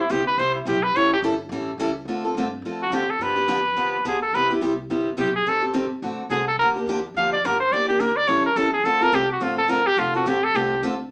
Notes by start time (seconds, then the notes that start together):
0.00 E4
0.09 D2 C3 G3 B3 E4 G4
0.27 B4
0.38 C2 C3 G3 B3 E4 G4 C5
0.55 E4
0.65 B1 C3 G3 B3 E4 G4
0.83 B4
0.94 A1 E3 G3 C#4 E4 A4 C#5
1.13 G4
1.22 G1 E3 G3 C#4 E4 A4
1.49 A1 E3 G3 C#4 E4 A4
1.78 C#2 E3 G3 C#4 E4 A4
2.05 D2 D3 A3 C4 F4 A4
2.25 C4 F4 A4
2.35 G2 D3 A3 C4 F4 A4
2.62 F2 D3 A3 C4 F4
2.66 A4
2.82 F#4
2.90 E2 D3 A3 C4 F4 G4 A4
3.10 A4
3.19 G2 D3 F3 B3 D4 G4 B4
3.36 B3 D4 G4
3.48 F2 D3 F3 B3 D4 G4
3.76 E2 D3 F3 B3 D4 G4
4.04 D2 D3 F3 B3 D4 G4 G#4
4.22 A4
4.33 E2 C3 G3 B3 E4 G4 B4
4.50 B3 E4 G4
4.61 C2 C3 G3 B3 E4 G4
4.90 G1 C3 G3 B3 E4 G4
5.17 B1 C3 G3 B3 E4 G4
5.36 G#4
5.46 A1 D#3 G3 C4 G4 A4
5.62 C4 G4 A4
5.74 G1 D#3 G3 C4 G4 A4
5.91 muted upright bass stroke
6.02 A1 D3 A3 C4 F#4 A4
6.19 muted upright bass stroke
6.29 C2 D3 A3 C4 F#4 G#4 A4
6.48 A4
6.58 D2 D3 F3 A#3 D4 A#4
6.62 G4
6.76 A#3 D4 G4
6.87 E2 D3 F3 A#3 D4 G4
7.14 F2 D3 F3 A#3 D4 G4 F5
7.33 D5
7.43 G2 D3 F3 A#3 D4 G4 A#4
7.60 C5
7.71 E2 E3 A#3 D4 G4 D5
7.88 A#3 D4 G4
8.00 D2 E3 A#3 D4 G4 A#4
8.17 D5
8.27 A1 E3 G3 C#4 E4 A4 C#5
8.45 A#4, muted upright bass stroke
8.56 E2 E3 G3 C#4 E4 A4
8.73 G#4
8.84 D2 D3 A3 C4 F4 A4
9.01 C4 F4 A4 A#4
9.12 C2 D3 A3 C4 F4 G4 A4
9.32 F#4
9.40 A1 D3 A3 C4 F4 A4
9.58 A4
9.68 G1 D3 A3 C4 F4 A4 A#4
9.86 G4, muted upright bass stroke
9.97 F1 D3 A3 C4 F4 A4
10.14 C4 F4 F#4 A4
10.26 A1 D3 A3 C4 F4 G4 A4
10.44 A4
10.54 C2 D3 A3 C4 F4 G4 A4
10.82 D2 D3 A3 C4 F4 A4